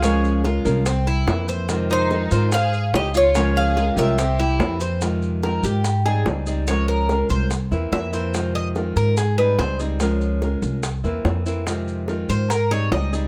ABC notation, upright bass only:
X:1
M:4/4
L:1/8
Q:1/4=144
K:Fm
V:1 name="Upright bass" clef=bass
D,,3 C,,3 F,,2- | F,,3 A,,3 D,,2- | D,,3 C,,3 F,,2- | F,,3 A,,3 D,,2- |
D,,3 C,,2 =E,, F,,2- | F,,3 A,,3 D,,2- | D,,3 C,,2 =E,, F,,2- | F,,3 A,,3 D,,2 |]